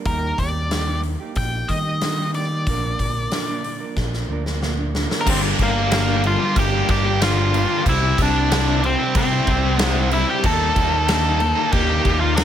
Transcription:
0.05 D#2 D#3 G3 A#3 D#4 G4 A#4, kick, open hi-hat
0.38 D#2 G3 A#3 D#4 G4 D5, kick, open hi-hat
0.71 D#3 G3 A#3 D#4 G4, snare, open hi-hat
0.87 A#3 D#4 G4
1.03 muted clean electric guitar stroke, open hi-hat
1.20 A#3 D#4 G4
1.35 A#1 G5, kick, open hi-hat
1.68 D#3 G3 A#3 D#4 G4 D#5, kick, open hi-hat
1.85 A#3 D#4 G4
2.01 D#3 G3 A#3 D#4 G4, snare, open hi-hat
2.18 A#3 D#4 G4
2.34 G3 A#3 D#4 D5, open hi-hat
2.38 G4
2.51 A#3 D#4 G4
2.67 A#1 A#2 D3 F3 A#3 D4 A#4, kick, open hi-hat
2.99 A#1 F3 A#3 D4 A#4, kick, open hi-hat
3.31 A#2 D3 F3 A#3 D4 A#4, snare, open hi-hat
3.48 F3 A#3 D4 A#4
3.64 muted clean electric guitar stroke, open hi-hat
3.80 F3 A#3 D4 A#4
3.96 A#1, kick, snare
4.14 snare
4.29 D2 F3 A#3 D4 A#4
4.46 F3 A#3 D4 A#4, snare
4.61 A#2 D3 F3 A#3 D4 A#4, snare
4.78 F3 A#3 D4 A#4
4.93 F3 A#3 D4 A#4, snare
5.09 F3 A#3 D4 A#4, snare
5.21 A#4
5.26 G1 G2 D3 G3 A#3 C4 D4 G4, kick, crash
5.30 C5
5.58 G1 G3 A#3 D4 G4, kick, crash
5.63 A#4
5.75 G3 A#3 D4
5.91 G2 D3 G3 A#3 D4 G4, snare, crash
6.07 G3 A#3 D4 G4
6.23 G2 D3 G3 A#3 D4 F4 F5, muted distorted electric guitar stroke, crash
6.39 G3 A#3 D4 G4, muted overdriven electric guitar stroke
6.56 G1 G2 D3 G3 G4 G5, kick, crash
6.72 G3 A#3 D4 G4
6.88 G1 D3 G3 A#3 D4 G4 G5, kick, crash
7.04 G3 A#3 D4 G4, muted overdriven electric guitar stroke
7.20 G2 D3 G3 A#3 D4 F4 G4 F5, snare, crash
7.36 G3 A#3 D4 G4
7.51 G2 D3 G3 A#3 D4 G4, crash
7.69 G3 A#3 D4
7.84 C2 C3 G3 C4 E4, kick, crash
7.89 E4 E5
8.18 C2 C3 G3 C4 D4 E4, kick, crash
8.22 D5
8.33 G3 C4 E4
8.50 C3 G3 C4 E4, snare, crash
8.66 G3 C4 E4
8.82 C3 G3 C4 E4 C5, muted distorted electric guitar stroke, crash
8.99 G3 C4 E4, muted overdriven electric guitar stroke
9.14 C3 G3 C4 C5, kick, crash
9.31 G3 C4 E4
9.47 C2 C3 G3 C4, kick, crash
9.51 E4
9.64 G3 C4 E4, muted overdriven electric guitar stroke
9.79 C3 G3 C4 E4 A#4, snare, crash
9.96 G3 C4 E4
10.11 C3 G3 C4 E4 E5, crash
10.27 G3 C4 E4 G4 G5
10.43 D#2 D#3 G3 A#3 D#4 A4 A5, kick, crash
10.76 D#2 D#3 G3 A#3 D#4, kick, crash
10.92 G3 A#3 D#4
11.08 D#3 G3 A#3 D#4, snare, crash
11.24 G3 A#3 D#4
11.40 D#3 G3 A#3 D#4, muted distorted electric guitar stroke, crash
11.55 G3 A#3 D#4, muted overdriven electric guitar stroke
11.72 D#2 D#3 A#3 D#4 G4 G5, kick, crash
11.88 G3 A#3 D#4
12.02 D#2 D#3 G3 A#3 D#4, kick, crash
12.20 G3 A#3 D#4 F4 F5, muted overdriven electric guitar stroke
12.35 D#3 G3 A#3 D#4 D#5, snare, crash
12.40 D#4

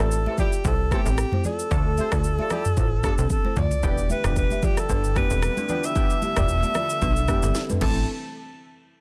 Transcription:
Already playing: A4
0.00 A1 E3 A3 C4 F4 A4 D5
0.11 shaker
0.26 E3 C4 G4 A4 E5, high conga
0.38 G3 E4 F4 G4 D5, kick, low conga, shaker
0.53 shaker
0.65 C2 E4 A4 C5, kick, shaker
0.91 E3 A3 B3 C4 G4 A4, kick, cross-stick, high conga, shaker
1.06 A1 C4 A4, shaker
1.18 cross-stick, shaker
1.32 E4 C5, mid tom, high conga
1.44 F4 A4 D5, high conga, low conga, shaker
1.59 shaker
1.71 D2 F3 A3 D4 A4, kick, low conga, shaker
1.97 C4 G4 A4 C5 E5, high conga, shaker
2.12 D2 F3 A3 D4 F4 A4 D5, kick, cross-stick, shaker
2.24 shaker
2.39 F3 D4 G4 A4 E5, high conga
2.50 G3 E4 F4 G4 D5, cross-stick, low conga, shaker
2.65 mid tom, shaker
2.77 A1 F4 C5, kick, shaker
3.03 F3 A3 B3 D4 G4 A4, kick, cross-stick, mid tom, high conga, shaker
3.18 C2 C4 A4, shaker
3.30 A4, kick, high tom, shaker
3.45 E4 C5, high conga
3.56 D2 F4 D5, mid tom, high conga, low conga, shaker
3.71 floor tom, shaker
3.83 E1 D3 E3 G3 B3 D4 E4 G4, kick, low conga, shaker
3.98 shaker
4.09 G4 B4 E5, high conga, shaker
4.24 E1 E3 B3 D4 F4 G4 D5, cross-stick, mid tom, shaker
4.36 B4, kick, shaker
4.50 G4 E5, high conga, shaker
4.62 F4 G4 D5, kick, low conga, shaker
4.77 A4, cross-stick, shaker
4.89 G1 D4 B4, kick, shaker
5.04 shaker
5.16 E3 B3 D4 G4 B4, kick, cross-stick, mid tom, high conga, shaker
5.30 E1 C4 A4, shaker
5.42 cross-stick, shaker
5.57 D4 B4, high conga, shaker
5.69 E3 B3 D4 F4 G4 D5, low conga, shaker
5.84 E5, shaker
5.95 E3 B3 D4 G4 A4, kick, low conga, shaker
6.10 shaker
6.22 G4 E5, high conga, shaker
6.37 E1 E3 B3 D4 F4 G4 D5, kick, cross-stick, mid tom, shaker
6.48 shaker
6.63 G4 E5, high conga, shaker
6.75 F4 D5, cross-stick, low conga, shaker
6.90 shaker
7.02 B1 D4 B4, kick, shaker
7.16 shaker
7.28 E3 B3 D4 G4, kick, cross-stick, mid tom, high conga, shaker
7.43 G1 C4 A4, shaker
7.55 snare, shaker
7.69 D4 B4, mid tom, high conga, shaker
7.81 A1 C3 E3 A3 C4 E4 A4 A5, kick, crash, high conga

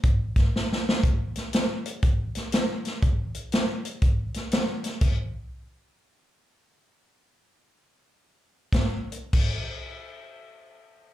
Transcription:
0.03 kick, closed hi-hat
0.36 kick, snare, closed hi-hat
0.56 snare
0.72 snare
0.89 snare
1.03 kick, closed hi-hat
1.36 snare, closed hi-hat
1.53 snare, closed hi-hat
1.86 closed hi-hat
2.03 kick, closed hi-hat
2.35 snare, closed hi-hat
2.52 snare, closed hi-hat
2.85 snare, closed hi-hat
3.02 kick, closed hi-hat
3.35 closed hi-hat
3.52 snare, closed hi-hat
3.85 closed hi-hat
4.02 kick, closed hi-hat
4.34 snare, closed hi-hat
4.52 snare, closed hi-hat
4.84 snare, closed hi-hat
5.01 kick, closed hi-hat, crash
8.73 kick, snare, closed hi-hat
9.12 closed hi-hat
9.33 kick, crash

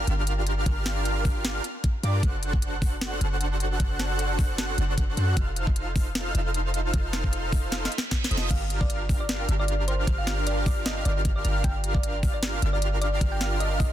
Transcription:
0.07 G1 D4 F4 G4 A#4 F5 F6, closed hi-hat
0.27 closed hi-hat
0.47 closed hi-hat
0.66 G1 D4 A#4, kick, closed hi-hat
0.86 snare, closed hi-hat
1.05 closed hi-hat
1.25 kick, open hi-hat
1.45 snare, closed hi-hat
1.64 closed hi-hat
1.84 kick, closed hi-hat
2.03 G2 D4 F4 G4 A#4 D5 D6, closed hi-hat
2.23 F#1 D4 F#4 A4 C5 F#5 F#6, kick, closed hi-hat
2.43 closed hi-hat
2.53 kick
2.62 closed hi-hat
2.82 kick, open hi-hat
3.01 snare, closed hi-hat
3.21 F#1 D4 F#4 A4 C5 F#5 F#6, closed hi-hat
3.41 closed hi-hat
3.60 closed hi-hat
3.80 F#1 D4 F#4 A4 C5 F#5 F#6, kick, closed hi-hat
4.00 snare, closed hi-hat
4.19 closed hi-hat
4.39 kick, open hi-hat
4.58 snare, closed hi-hat
4.78 F#1 D4 F#4 A4 C5 F#5 F#6, closed hi-hat
4.98 kick, closed hi-hat
5.17 F#2 D4 F#4 A4 C5 F#5 F#6, closed hi-hat
5.37 F1 D#4 F4 A4 C5 F5 F6, kick, closed hi-hat
5.56 closed hi-hat
5.67 kick
5.76 closed hi-hat
5.96 kick, open hi-hat
6.15 snare, closed hi-hat
6.35 F1 D#4 F4 A4 C5 F5 F6, closed hi-hat
6.54 closed hi-hat
6.74 closed hi-hat
6.94 F1 D#4 A4 F6, kick, closed hi-hat
7.13 snare, closed hi-hat
7.24 kick
7.33 closed hi-hat
7.52 kick, open hi-hat
7.72 snare, closed hi-hat, reverse cymbal
7.85 snare
7.92 closed hi-hat
7.98 snare
8.11 kick, snare, closed hi-hat
8.24 snare
8.31 F1 D#4 F4 A4 C5 D#5 D#6, closed hi-hat
8.37 snare
8.50 G1 D4 F4 G4 A#4 F5 F6, kick, closed hi-hat, crash
8.70 closed hi-hat
8.81 D5, kick
8.90 closed hi-hat
9.09 kick, open hi-hat
9.20 D5
9.29 snare, closed hi-hat
9.48 G1 D4 F4 G4 A#4 F5 F6, closed hi-hat
9.59 D5
9.68 closed hi-hat
9.88 C5, closed hi-hat
10.07 G1 D4 F4 G4 A#4 F5 F6, kick, closed hi-hat
10.18 F5
10.27 snare, closed hi-hat
10.47 D5, closed hi-hat
10.66 D5, kick, open hi-hat
10.86 D#5, snare, closed hi-hat
11.05 G1 D4 F4 G4 A#4 D5 F5 F6, closed hi-hat
11.25 kick, closed hi-hat
11.36 D5
11.45 G1 D4 F4 G4 A#4 F5 F6, closed hi-hat
11.64 G1 F4 G5 F6, kick, closed hi-hat
11.84 closed hi-hat
11.95 D5, kick
12.03 closed hi-hat
12.23 kick, open hi-hat
12.34 D5
12.43 snare, closed hi-hat
12.62 G1 D4 F4 G4 A#4 F5 F6, closed hi-hat
12.73 D5
12.82 closed hi-hat
13.01 D5, closed hi-hat
13.21 G1 D4 F4 G4 A#4 F6, kick, closed hi-hat
13.32 G5
13.41 snare, closed hi-hat
13.60 D#5, closed hi-hat
13.80 D#5, kick, open hi-hat

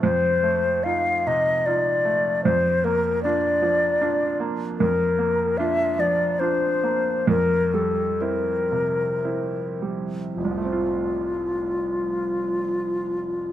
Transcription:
0.02 F2 C5
0.43 A3
0.84 D#4 F4 F5
1.27 C3 D#5
1.66 D#4 F4 D5
2.05 A3
2.44 F2 C5
2.84 A#3 A#4
3.23 D4 F4 D5
3.62 F3
4.01 D4 F4
4.40 A#3
4.79 F2 A#4
5.19 A#3
5.58 D4 F4 E5
5.99 F3 D5
6.39 D4 F4 C5
6.84 A#3
7.27 F2 A#4
7.74 G3 A4
8.21 C4 E4 A#4
8.72 C3
9.24 C4 E4
9.82 G3
10.35 F1 F4
10.44 C2
10.51 F3
10.58 A3
10.65 C4
10.72 F4

